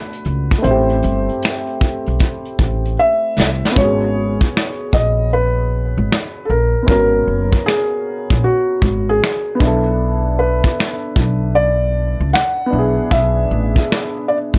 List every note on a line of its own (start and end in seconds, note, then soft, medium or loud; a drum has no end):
0.00 0.57 A3 medium
0.00 0.60 B3 medium
0.00 0.62 D4 soft
0.00 0.64 F#4 medium
0.00 0.60 B4 loud
0.13 closed hi-hat medium
0.25 0.50 C#2 medium
0.25 closed hi-hat medium
0.51 kick medium
0.51 closed hi-hat soft
0.58 3.69 A3 medium
0.62 1.01 A1 medium
0.62 3.71 C4 medium
0.62 2.94 C5 medium
0.62 closed hi-hat medium
0.67 3.73 E4 medium
0.71 3.75 G4 medium
0.90 closed hi-hat soft
1.02 1.28 G1 medium
1.02 closed hi-hat medium
1.29 closed hi-hat soft
1.42 finger snap medium
1.42 snare loud
1.42 closed hi-hat medium
1.67 closed hi-hat soft
1.81 kick loud
1.81 closed hi-hat medium
2.06 2.20 B1 medium
2.06 closed hi-hat medium
2.19 kick medium
2.19 closed hi-hat medium
2.45 closed hi-hat soft
2.59 2.96 A1 medium
2.59 kick medium
2.59 closed hi-hat medium
2.85 closed hi-hat soft
2.99 3.79 E5 loud
3.38 3.62 C2 medium
3.38 snare medium
3.65 snare medium
3.71 6.81 B3 medium
3.75 4.37 G#1 loud
3.75 6.83 C#4 medium
3.75 4.89 C#5 loud
3.75 kick loud
3.80 6.85 F#4 medium
3.84 6.88 G#4 medium
4.41 kick medium
4.57 finger snap medium
4.57 snare loud
4.93 5.93 A#1 medium
4.93 5.30 D#5 loud
4.93 kick loud
5.33 6.48 B4 medium
5.98 6.09 G#1 medium
6.12 finger snap medium
6.12 snare loud
6.45 6.49 A4 medium
6.49 6.73 A#1 medium
6.49 6.87 A#4 medium
6.83 9.54 B3 medium
6.83 9.56 C#4 medium
6.88 7.24 G#1 medium
6.88 9.58 F#4 medium
6.88 7.62 A#4 medium
6.88 kick loud
6.95 9.60 A#4 medium
7.27 7.51 F#1 medium
7.53 kick medium
7.66 8.46 G#4 loud
7.66 finger snap medium
7.66 snare loud
8.30 8.43 A#1 medium
8.30 kick medium
8.44 9.10 F#4 medium
8.82 9.19 G#1 medium
8.82 kick medium
9.09 9.57 G#4 medium
9.23 finger snap medium
9.23 snare loud
9.55 12.65 B3 medium
9.59 10.60 B1 medium
9.59 12.68 D4 medium
9.59 kick loud
9.63 12.70 E4 medium
9.63 12.72 A4 medium
10.39 11.51 B4 medium
10.64 kick medium
10.80 finger snap medium
10.80 snare loud
11.16 12.16 B1 medium
11.16 kick loud
11.55 12.29 D5 loud
12.20 12.33 C#2 medium
12.33 13.13 F#5 loud
12.33 finger snap medium
12.33 snare loud
12.66 14.59 B3 medium
12.66 14.59 D4 medium
12.73 12.96 B1 medium
12.73 14.59 E4 medium
12.79 14.59 G#4 medium
13.11 13.48 B1 loud
13.11 14.32 E5 loud
13.11 kick loud
13.51 13.75 A1 medium
13.76 kick loud
13.92 finger snap medium
13.92 snare loud
14.28 14.37 D5 medium
14.54 14.59 G#1 medium
14.54 kick medium